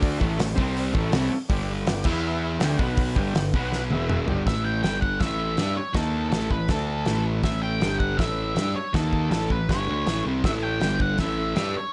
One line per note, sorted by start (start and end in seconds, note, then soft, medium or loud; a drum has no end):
0.00 0.19 D2 loud
0.00 0.19 D3 medium
0.00 0.20 A3 loud
0.00 0.13 D4 medium
0.00 0.20 D4 loud
0.00 0.13 A4 medium
0.00 0.13 D5 loud
0.00 kick loud
0.00 open hi-hat medium
0.16 0.38 A2 medium
0.16 0.38 E3 loud
0.16 0.49 E4 medium
0.16 0.49 A4 medium
0.16 0.49 C#5 medium
0.21 0.39 A1 medium
0.21 0.39 A3 loud
0.21 kick loud
0.39 0.57 A1 medium
0.39 0.54 A2 medium
0.39 0.54 E3 medium
0.39 snare loud
0.39 open hi-hat medium
0.55 0.92 C2 medium
0.55 0.92 C3 medium
0.55 0.94 G3 loud
0.55 0.86 C4 loud
0.55 0.95 C4 loud
0.55 0.86 G4 medium
0.55 0.87 C5 loud
0.55 kick loud
0.77 open hi-hat medium
0.93 1.12 A1 medium
0.93 1.11 A2 medium
0.93 1.12 E3 loud
0.93 1.13 A3 loud
0.93 1.38 E4 loud
0.93 1.38 A4 medium
0.93 1.38 C#5 loud
0.93 kick loud
1.12 1.30 C2 loud
1.12 1.30 C3 medium
1.12 1.31 G3 medium
1.12 1.32 C4 loud
1.12 snare loud
1.12 open hi-hat medium
1.31 muted distorted electric guitar stroke medium
1.31 muted picked electric bass stroke soft
1.49 1.85 G1 medium
1.49 1.86 G2 loud
1.49 1.86 D3 loud
1.49 1.87 G3 loud
1.49 1.73 D4 medium
1.49 1.74 G4 medium
1.49 1.74 D5 loud
1.49 kick loud
1.49 open hi-hat medium
1.87 2.04 G1 medium
1.87 2.02 G2 medium
1.87 2.02 D3 medium
1.87 2.06 D4 medium
1.87 2.06 G4 medium
1.87 2.06 D5 medium
1.87 snare loud
1.87 open hi-hat medium
2.04 2.57 E2 medium
2.04 2.60 E3 loud
2.04 2.61 B3 loud
2.04 2.49 E4 loud
2.04 2.61 E4 loud
2.04 2.49 B4 medium
2.04 2.50 E5 loud
2.04 kick loud
2.04 crash loud
2.60 2.78 D2 loud
2.60 2.78 D3 loud
2.60 2.79 A3 loud
2.60 2.80 D4 loud
2.60 2.80 G4 medium
2.60 2.80 D5 medium
2.60 2.80 G5 loud
2.60 snare loud
2.60 open hi-hat medium
2.79 3.14 B1 loud
2.79 3.16 B2 loud
2.79 3.16 F#3 loud
2.79 3.17 B3 loud
2.79 3.09 F#4 medium
2.79 3.09 B4 medium
2.79 3.09 F#5 loud
2.79 kick loud
2.97 kick loud
2.97 open hi-hat medium
3.15 3.33 G1 medium
3.15 3.35 G2 medium
3.15 3.35 D3 loud
3.15 3.35 G3 loud
3.15 3.46 G4 medium
3.15 3.46 D5 medium
3.15 3.46 G5 medium
3.15 kick loud
3.34 3.52 G1 medium
3.34 3.51 G2 medium
3.34 3.50 D3 medium
3.34 snare loud
3.34 open hi-hat medium
3.54 3.89 B1 medium
3.54 3.90 B2 medium
3.54 3.91 F#3 medium
3.54 3.91 B3 loud
3.54 3.84 F#4 medium
3.54 3.85 B4 medium
3.54 3.84 F#5 loud
3.54 kick loud
3.72 snare medium
3.90 4.26 E1 medium
3.90 4.28 E2 medium
3.90 4.29 B2 loud
3.90 4.29 E3 loud
3.90 4.20 E4 medium
3.90 4.20 B4 medium
3.90 4.21 E5 loud
3.90 high tom medium
4.10 mid tom loud
4.27 4.45 G1 medium
4.27 4.46 G2 loud
4.27 4.46 D3 loud
4.27 4.47 G3 loud
4.27 4.44 D4 medium
4.27 4.44 G4 medium
4.27 4.44 D5 loud
4.27 floor tom loud
4.46 4.82 A1 medium
4.46 4.83 A2 medium
4.46 4.84 E3 medium
4.46 4.84 A3 loud
4.46 4.64 E5 loud
4.46 kick loud
4.46 snare loud
4.46 open hi-hat soft
4.64 4.82 G5 medium
4.83 5.18 G1 medium
4.83 5.20 G2 medium
4.83 5.21 D3 medium
4.83 5.21 G3 medium
4.83 5.01 G5 medium
4.83 snare loud
4.83 open hi-hat soft
5.01 5.21 F#5 medium
5.01 kick medium
5.20 5.55 A1 medium
5.20 5.58 A2 medium
5.20 5.58 E3 medium
5.20 5.58 A3 medium
5.20 5.76 E5 medium
5.20 kick loud
5.20 snare medium
5.20 open hi-hat soft
5.57 5.76 G2 medium
5.57 5.76 G3 medium
5.57 5.77 D4 medium
5.57 5.77 G4 loud
5.57 snare loud
5.57 open hi-hat soft
5.76 5.96 C#5 medium
5.76 muted distorted electric guitar stroke medium
5.76 muted picked electric bass stroke soft
5.93 6.30 D#2 medium
5.93 6.31 D#3 medium
5.93 6.32 A#3 medium
5.93 6.32 D#4 loud
5.93 6.28 A4 medium
5.93 kick loud
5.93 snare loud
5.93 open hi-hat soft
6.29 6.50 A1 medium
6.29 6.49 A2 medium
6.29 6.49 E3 medium
6.29 6.51 A3 medium
6.29 6.51 A4 medium
6.29 snare loud
6.29 open hi-hat soft
6.50 6.68 A1 medium
6.50 6.66 A2 medium
6.50 6.66 E3 medium
6.50 6.70 B4 medium
6.50 kick medium
6.68 7.04 D2 medium
6.68 7.06 D3 medium
6.68 7.07 A3 medium
6.68 7.08 D4 medium
6.68 7.23 A4 medium
6.68 kick loud
6.68 snare loud
6.68 open hi-hat soft
7.05 7.42 A1 medium
7.05 7.42 A2 medium
7.05 7.43 E3 medium
7.05 7.43 A3 medium
7.05 snare loud
7.05 open hi-hat soft
7.43 7.79 A1 medium
7.43 7.81 A2 loud
7.43 7.82 E3 medium
7.43 7.82 A3 loud
7.43 7.62 E5 medium
7.43 kick loud
7.43 snare loud
7.43 open hi-hat medium
7.62 7.99 G5 medium
7.80 8.17 G1 medium
7.80 8.18 G2 medium
7.80 8.18 D3 loud
7.80 8.19 G3 medium
7.80 snare loud
7.80 open hi-hat soft
7.99 8.20 F#5 medium
7.99 kick medium
8.17 8.54 A1 medium
8.17 8.56 A2 medium
8.17 8.54 E3 medium
8.17 8.56 A3 loud
8.17 8.75 E5 medium
8.17 kick loud
8.17 snare loud
8.17 open hi-hat soft
8.55 8.74 G2 medium
8.55 8.74 G3 medium
8.55 8.75 D4 medium
8.55 8.75 G4 medium
8.55 snare loud
8.55 open hi-hat soft
8.75 8.93 C#5 medium
8.75 muted picked electric bass stroke soft
8.75 muted distorted electric guitar stroke medium
8.93 9.29 D#2 medium
8.93 9.31 D#3 medium
8.93 9.31 A#3 loud
8.93 9.32 D#4 loud
8.93 9.30 A4 medium
8.93 kick loud
8.93 snare loud
8.93 open hi-hat soft
9.13 kick medium
9.29 9.48 A1 medium
9.29 9.50 A2 medium
9.29 9.50 E3 medium
9.29 9.51 A4 medium
9.29 snare loud
9.29 open hi-hat soft
9.34 9.51 A3 medium
9.50 9.68 A1 medium
9.50 9.66 A2 medium
9.50 9.66 E3 medium
9.50 9.71 B4 medium
9.50 kick medium
9.69 9.87 G1 medium
9.69 9.87 G2 medium
9.69 9.86 D3 medium
9.69 9.88 G3 loud
9.69 10.22 C#5 medium
9.69 kick medium
9.69 snare medium
9.69 open hi-hat soft
9.87 10.05 D2 medium
9.87 10.06 D3 medium
9.87 10.07 A3 medium
9.87 10.07 D4 medium
10.06 10.24 A1 medium
10.06 10.24 A2 medium
10.06 10.25 E3 medium
10.06 10.26 A3 medium
10.06 snare loud
10.06 open hi-hat soft
10.25 10.43 C2 medium
10.25 10.44 C3 medium
10.25 10.44 G3 medium
10.25 10.44 C4 medium
10.44 10.79 A1 medium
10.44 10.81 A2 loud
10.44 10.82 E3 loud
10.44 10.82 A3 loud
10.44 10.68 E4 medium
10.44 10.68 A4 medium
10.44 10.69 C#5 medium
10.44 10.50 E5 medium
10.44 kick loud
10.44 snare loud
10.44 open hi-hat soft
10.63 11.01 G5 loud
10.80 11.16 G1 medium
10.80 11.18 G2 medium
10.80 11.17 D3 medium
10.80 11.18 G3 medium
10.80 11.06 D4 medium
10.80 11.06 G4 medium
10.80 11.06 D5 medium
10.80 snare loud
10.80 open hi-hat soft
11.00 11.20 F#5 medium
11.00 kick medium
11.18 11.54 A1 medium
11.18 11.55 A2 medium
11.18 11.54 E3 medium
11.18 11.55 A3 medium
11.18 11.44 E4 medium
11.18 11.78 E5 medium
11.18 kick loud
11.18 snare loud
11.18 open hi-hat soft
11.22 11.45 A4 medium
11.22 11.45 C#5 medium
11.55 11.74 G2 medium
11.55 11.74 G3 medium
11.55 11.74 D4 medium
11.55 11.81 E4 medium
11.55 11.75 G4 loud
11.55 11.81 A4 medium
11.55 11.81 C#5 medium
11.55 snare loud
11.55 open hi-hat medium
11.75 11.93 C#5 medium
11.75 muted distorted electric guitar stroke medium
11.75 muted picked electric bass stroke soft